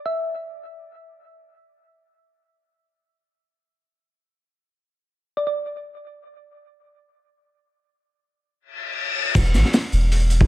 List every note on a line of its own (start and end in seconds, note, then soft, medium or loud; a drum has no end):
0.06 0.34 E5 medium
5.37 5.43 D5 medium
5.47 5.53 D5 medium
8.60 reverse cymbal medium
9.35 9.56 E1 loud
9.35 kick loud
9.35 open hi-hat medium
9.35 crash medium
9.35 shaker medium
9.46 snare soft
9.46 closed hi-hat soft
9.54 9.64 A1 loud
9.54 snare medium
9.54 open hi-hat medium
9.54 shaker medium
9.65 snare soft
9.73 snare loud
9.73 open hi-hat loud
9.73 shaker medium
9.92 10.47 E1 loud
9.92 open hi-hat medium
9.92 shaker medium
10.12 open hi-hat medium
10.30 open hi-hat medium
10.30 shaker medium
10.41 kick loud